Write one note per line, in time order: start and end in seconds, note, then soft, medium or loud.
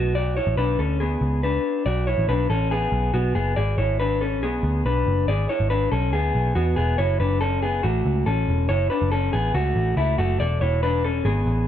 0.00 0.39 B1 medium
0.00 0.15 B3 medium
0.00 0.15 F#4 medium
0.15 0.37 F#4 medium
0.15 0.36 D5 medium
0.37 0.58 E4 medium
0.37 0.57 C#5 medium
0.47 0.56 A1 medium
0.57 0.76 B1 medium
0.57 0.79 D4 medium
0.57 0.79 B4 medium
0.79 1.15 D2 medium
0.79 1.01 C#4 medium
0.79 1.00 A4 medium
1.00 1.41 B3 medium
1.00 1.40 G#4 medium
1.21 1.58 C#2 medium
1.43 1.84 D4 soft
1.43 1.83 B4 medium
1.86 2.13 B1 medium
1.86 2.08 F#4 medium
1.86 2.07 D5 medium
2.07 2.29 E4 soft
2.07 2.28 C#5 medium
2.18 2.27 A1 medium
2.28 2.46 B1 medium
2.28 2.50 D4 medium
2.28 2.49 B4 medium
2.50 2.86 A1 medium
2.50 2.72 C#4 medium
2.50 2.71 A4 medium
2.71 3.12 B3 medium
2.71 3.11 G#4 medium
2.92 3.10 B1 medium
3.13 3.32 B1 medium
3.13 3.35 B3 medium
3.13 3.35 F#4 medium
3.35 3.54 F#1 medium
3.35 3.57 B3 medium
3.35 3.56 G#4 medium
3.56 3.75 G#1 medium
3.56 3.78 G#4 medium
3.56 3.77 D5 medium
3.78 4.42 G#1 loud
3.78 4.00 E4 soft
3.78 3.99 C#5 medium
4.00 4.21 D4 medium
4.00 4.21 B4 medium
4.21 4.43 C#4 medium
4.21 4.42 A4 medium
4.42 4.60 B1 loud
4.42 4.83 B3 medium
4.42 4.83 G#4 medium
4.63 4.82 D2 medium
4.85 5.03 B1 medium
4.85 5.26 D4 soft
4.85 5.26 B4 medium
5.07 5.25 F#1 medium
5.28 5.46 G#1 medium
5.28 5.50 G#4 medium
5.28 5.49 D5 medium
5.49 5.70 E4 medium
5.49 5.70 C#5 medium
5.60 5.87 G#1 medium
5.70 5.92 D4 medium
5.70 5.91 B4 medium
5.92 6.13 B1 medium
5.92 6.14 C#4 medium
5.92 6.12 A4 medium
6.13 6.31 D2 medium
6.13 6.54 B3 medium
6.13 6.53 G#4 medium
6.35 6.53 B1 medium
6.55 6.74 E2 medium
6.55 6.76 B3 medium
6.55 6.77 F#4 medium
6.76 6.95 E1 medium
6.76 6.99 B3 medium
6.76 6.98 G#4 medium
6.98 7.17 F#1 medium
6.98 7.20 E4 medium
6.98 7.19 C#5 medium
7.20 7.81 F#1 loud
7.20 7.41 D4 medium
7.20 7.40 B4 medium
7.41 7.63 C#4 medium
7.41 7.62 A4 medium
7.62 7.83 B3 medium
7.62 7.84 G#4 medium
7.83 8.02 A1 medium
7.83 8.24 A3 medium
7.83 8.24 F#4 medium
8.05 8.24 C#2 loud
8.26 8.45 A1 medium
8.26 8.67 C#4 soft
8.26 8.67 A4 medium
8.48 8.66 E1 medium
8.69 8.88 F#1 medium
8.69 8.91 E4 medium
8.69 8.90 C#5 medium
8.90 9.12 D4 medium
8.90 9.11 B4 medium
9.02 9.29 F#1 medium
9.12 9.33 C#4 medium
9.12 9.33 A4 medium
9.33 9.52 A1 medium
9.33 9.55 B3 medium
9.33 9.54 G#4 medium
9.54 9.73 C#2 medium
9.54 9.95 A3 medium
9.54 9.95 F#4 medium
9.76 9.94 A1 medium
9.97 10.15 C#2 medium
9.97 10.18 A3 medium
9.97 10.18 E4 medium
10.18 10.37 F#1 medium
10.18 10.40 A3 medium
10.18 10.39 F#4 medium
10.40 10.58 E1 medium
10.40 10.62 A4 medium
10.40 10.61 D5 medium
10.61 11.22 E1 loud
10.61 10.83 E4 medium
10.61 10.83 C#5 medium
10.83 11.05 D4 medium
10.83 11.04 B4 medium
11.04 11.26 C#4 medium
11.04 11.25 A4 medium
11.25 11.43 G#1 medium
11.25 11.66 B3 medium
11.25 11.65 G#4 medium
11.46 11.68 A1 medium